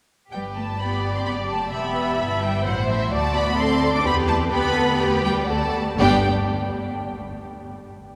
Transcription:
0.32 G1 G3 G4 B4 G5
0.55 A3 A5
0.79 B3 G4 D5 B5
1.15 C4 C6
1.25 F#1 B3 B5
1.49 A3 A5
1.72 E1 B3 G4 E5 B5
1.94 B4
2.18 G1 E4 B4
2.41 G3 E4 G5
2.64 A1 F#3 C5 F#5
2.87 E3 E5
3.11 D2 A3 F#4 D5 A5
3.35 B3 B5
3.57 C4 A4 D5 C6
3.93 D4 D6
4.03 E2 B3 G4 B4 B5
4.28 A3 A5
4.50 D2 B3 G4 B4 B5
4.76 A4
4.99 G4
5.24 G3 G5
5.49 D2 A3 F#4 A4 D5 A5
6.00 G1 G3 B3 D4 G4 D5 G5

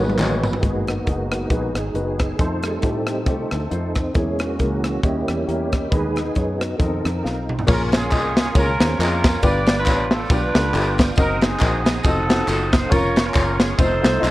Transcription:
Already playing: B2 D#3 F#3 G#3 A#3 B3
0.00 G#1 D#4 F#4 B4
0.10 high tom
0.18 A1 G#3 D#4 F#4 C#5, clap, mid tom, tambourine
0.33 B4
0.44 floor tom, tambourine
0.53 floor tom
0.59 G#1 G#2 G#3 A#3 B3 D#4 F#4 G#4, closed hi-hat
0.63 B2 D#3 F#3 G#3 F#4 B4, kick
0.87 B3 D#4 F#4, cross-stick, closed hi-hat
1.07 F#1 G#3 D#4 F#4 G#4, kick, closed hi-hat
1.32 cross-stick, closed hi-hat
1.50 A#1 G#3 A#3 B3 D#4 F#4 G#4 B4, kick, closed hi-hat
1.75 G#1, cross-stick, closed hi-hat
1.79 G#4
1.94 F#1 G#3 B3 D#4 F#4 G#4 B4, closed hi-hat
2.19 kick, cross-stick, closed hi-hat
2.38 F2 D#3 F3 A3 C4 D#4 F4 A4 C5, kick, closed hi-hat
2.63 G3 A3 D#4, cross-stick, closed hi-hat
2.67 G#4
2.74 C4 D#4 A4
2.82 A2 A3 D#4 F4 G4, kick, closed hi-hat
3.07 G4, cross-stick, closed hi-hat
3.26 C3 G3 A3 C4 D#4 F4 G4, kick, closed hi-hat
3.31 A4
3.51 D2, cross-stick, closed hi-hat
3.70 F2 A3 D#4 F4 C5, closed hi-hat
3.95 kick, cross-stick, closed hi-hat
4.14 E2 C#3 E3 G#3 A#3 C#4 E4 G#4 C#5, kick, closed hi-hat
4.39 A#3 C#4 F#4, cross-stick, closed hi-hat
4.58 C#2 A#3 E4 G#4 A#4, kick, closed hi-hat
4.84 cross-stick, closed hi-hat
5.03 D#2 D#3 G3 A#3 C#4 E4 G4 D#5, kick, closed hi-hat
5.28 E2, cross-stick, closed hi-hat
5.45 E2 A#3 C#4 E4 G4 A#4, closed hi-hat
5.72 kick, cross-stick, closed hi-hat
5.90 D#2 D#3 G#3 B3 D#4 G#4 B4 D#5, kick, closed hi-hat
6.16 cross-stick, closed hi-hat
6.23 B3 D#4 G#4
6.35 F#2 B3 D#4 G#4 C#5, kick, closed hi-hat
6.58 F#4, cross-stick, closed hi-hat
6.77 F2 D#3 F3 C4 D#4 F4 A4 A#4 D#5, kick, closed hi-hat
7.05 F2, cross-stick, closed hi-hat
7.22 B1 C4 F4 A4 F5, snare
7.49 mid tom
7.59 floor tom
7.67 A#1 A#2 A#3 C#4 F4 G#4 A#4 C#5 F5 G#5 C#6, kick, crash, tambourine
7.92 C#4 F4 G#4, snare, ride bell, tambourine
8.11 C2 A#3 C#4 F4 G#4 D#5, kick, clap, ride bell, tambourine
8.37 G#4, snare, ride bell, tambourine
8.55 C#2 A#3 C#4 F4 G#4 A#4 C#5, kick, ride bell, tambourine
8.80 D#2 A#3 C#4 F4 G#4 C5, snare, ride bell, tambourine
8.99 F2 A#3 C#4 F4 G#4 A#4 D#5, clap, ride bell, tambourine
9.24 kick, snare, ride bell, tambourine
9.42 G1 G2 B3 D4 F4 G4 B4 D5 G5 D6, kick, ride bell, tambourine
9.66 snare, ride bell, tambourine
9.78 D4 F4 B4
9.86 A1 B3 D4 F4 G4 C#5, kick, clap, ride bell, tambourine
10.11 A4, snare, ride bell, tambourine
10.30 B1 B3 D4 F4 G4 B4 D5, kick, ride bell, tambourine
10.54 C#2 B3 D4 F4 G4 A4, snare, ride bell, tambourine
10.73 G1 B3 D4 F4 G4 A4, clap, ride bell, tambourine
10.98 kick, snare, ride bell, tambourine
11.16 F#1 C4 D#4 F#4 A#4 C5 D#5 F#5 A#5 D#6, kick, ride bell, tambourine
11.41 C4 D#4 G#4, snare, ride bell, tambourine
11.59 A#1 C4 D#4 F#4 A#4 D#5, kick, clap, ride bell, tambourine
11.85 snare, ride bell, tambourine
12.03 F1 C4 D#4 F4 F#4 A4 D#5 F5 F#5 D#6, kick, ride bell, tambourine
12.29 C4 F4 F#4 A4 F#5, snare, ride bell, tambourine
12.47 F#1 C4 F4 F#4 A4 C5, clap, ride bell, tambourine
12.72 C5, kick, snare, ride bell, tambourine
12.90 F1 C#4 F4 A#4 C#5 C#6, kick, ride bell, tambourine
13.16 snare, ride bell, tambourine
13.25 C#4 F4 A#4
13.34 F#1 C#4 F4 C#5, kick, clap, ride bell, tambourine
13.58 G#4, snare, ride bell, tambourine
13.78 F1 A3 C4 D#4 F4 A4 C5 D#5 C6, kick, ride bell, tambourine
14.01 C2 A3 C4 D#4 F4 C5, snare, ride bell, tambourine
14.20 B1 A3 C4 D#4 F4 D#5
14.24 clap, ride bell, tambourine

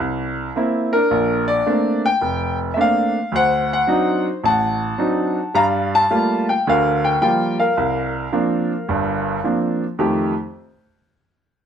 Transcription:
0.00 C2
0.56 A#3 C4 E4
0.93 D4 A#4
1.11 A#1
1.48 D5
1.67 A3 A#3 C4 D4
2.06 G5
2.21 F1
2.74 A3 A#3 C4 D4 E5
2.81 F5
3.32 D2 C5 F#5
3.73 F#5
3.87 F#3 C4 D4 D#4
4.44 A1 F#5 A5
4.98 F#3 C4 D4 D#4
5.54 G2 G3 F5 A#5
5.95 A5
6.11 G3 A3 A#3 F4
6.49 G5
6.67 D2 D3 A#4 F5
7.05 G5
7.22 F3 G3 A#3 F4 G5
7.60 A#4 F5
7.77 C2
8.32 F3 A#3 C4 D4
8.89 G1 G2
9.44 F3 A#3 C4 D4
9.99 F2 D#3 A3 G4

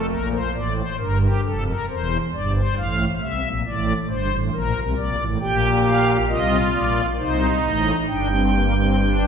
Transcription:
0.09 A#1 A#2 A#4
0.32 C5
0.53 A1 A2 D5
0.76 C5
0.99 G1 G2 A#4
1.22 G4
1.44 F1 F2 A4
1.67 A#4
1.90 E1 E2 C5
2.33 G1 G2 D5
2.55 C5
2.77 A1 A2 F5
3.21 C2 C3 E5
3.44 A#1 A#2
3.66 A1 A2 D5
4.09 G1 G2 C5
4.31 A1 A2
4.53 A#1 A#2 A#4
4.75 C2 C3
4.96 A#1 A#2 D5
5.18 A1 A2
5.41 A#1 A#2 G4 G5
5.84 F5
6.29 C2 C3 F4 D#5
6.73 A#1 A#2 D5
7.18 C2 C3 D#4 C5
7.63 A1 A2 D#5
8.08 G1 G2 D4 G5
8.30 C4
8.53 A#3
8.76 C4
8.99 D4

